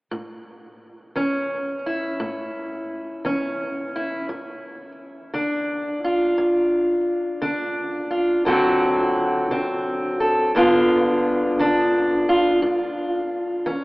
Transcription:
0.11 A2
1.16 E3 C#4
1.86 E4
2.20 A2
3.25 E3 C#4
3.96 E4
4.29 G2
5.34 D3 D4
6.04 F4
6.38 G2
7.42 D3 D4
8.11 F4
8.45 D2 D3 F#3 C4 F#4
9.51 D3 C4
10.20 A4
10.55 G2 D3 B3 D4 F4
11.59 D3 D4
12.29 F4
12.62 A2
13.66 E3 C#4

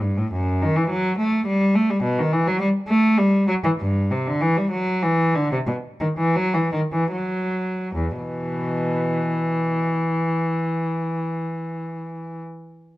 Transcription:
0.01 G2
0.17 A2
0.32 F#2
0.62 D#3
0.76 E3
0.90 F#3
1.19 A3
1.46 G3
1.75 A3
1.90 G3
2.03 B2
2.19 D#3
2.32 E3
2.47 F#3
2.60 G3
2.88 A3
3.18 G3
3.48 F#3
3.64 E3
3.80 G2
4.11 C3
4.27 D3
4.41 E3
4.57 G3
4.71 F#3
5.02 E3
5.35 D3
5.52 C3
5.67 B2
6.00 D#3
6.18 E3
6.36 F#3
6.54 E3
6.72 D#3
6.92 E3
7.11 F#3
7.95 E2
8.19 B2 E3

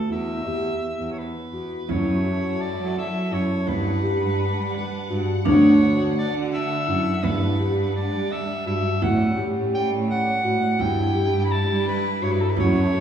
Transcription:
0.10 E2 E4 E5
0.46 E2 G4
0.99 E2
1.11 C#5
1.18 B4
1.53 E2 F#4
1.88 F#2 F#3 E4 A4 C#5, frame drum
2.25 F#4
2.43 F#2
2.61 D5
2.78 F#3
2.95 E5, frame drum
3.31 F#2 E4 C#5
3.66 G2 G3 D4 E4 B4 F#5, frame drum
4.03 G4
4.21 G2
4.56 G3
4.74 B4, frame drum
5.10 G2 F#4
5.45 D2 D3 D4 C#5, frame drum
5.81 F#4
5.99 D2
6.18 D5
6.34 D3
6.52 E5, frame drum
6.88 F#2 E4
7.22 G2 G3 D4 E4 B4, frame drum
7.59 G4, frame drum
7.77 G2
7.96 D5
8.13 G3
8.31 E5, frame drum
8.66 G2 F#4 E5
9.02 A2 G3 A3 C#4 E4 F#5, frame drum
9.37 G4
9.56 A2
9.75 G5
9.91 A2
10.08 F#5, frame drum
10.44 A2 F#4
10.79 G2 G3 D4 E4 G5, frame drum
11.15 G4
11.33 G2
11.45 B5
11.52 A5
11.69 G3
11.86 B4, frame drum
12.21 G2 F#4 C#5
12.32 B4
12.41 A4
12.50 B4
12.57 F#2 F#3 E4 A4 C#5, frame drum
12.93 F#4

